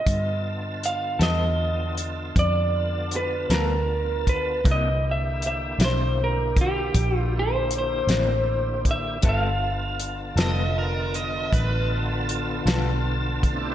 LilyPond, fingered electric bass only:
\new Staff \with { instrumentName = "Fingered electric bass" } { \clef bass \time 12/8 \key g \dorian \tempo 4. = 52 g,4. e,4. f,4. d,4. | c,4. b,,4. bes,,4. a,,4. | g,,4. f,,4. a,,4. b,,4. | }